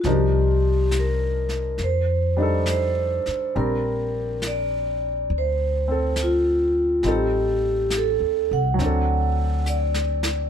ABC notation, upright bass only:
X:1
M:4/4
L:1/8
Q:"Swing" 1/4=69
K:Bb
V:1 name="Upright bass" clef=bass
C,,4 F,,3 z | B,,,4 D,,4 | A,,,2- (3A,,, E,, C,, D,,4 |]